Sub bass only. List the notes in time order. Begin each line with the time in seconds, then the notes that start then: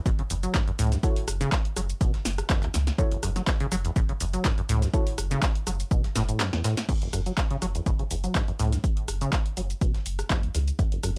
0.06 F#1
0.30 F#1
0.79 C#2
1.28 F#1
1.76 F#1
2.01 F#1
2.25 F#1
2.74 C#2
3.23 F#1
3.72 F#1
3.96 F#1
4.20 F#1
4.69 C#2
5.18 F#1
5.67 F#1
5.91 F#1
6.16 F#1
7.13 F#1
7.62 F#1
7.86 F#1
8.11 F#1
8.59 C#2
9.08 F#1
9.57 F#1
9.81 F#1
10.06 F#1
10.55 C#2
11.03 F#1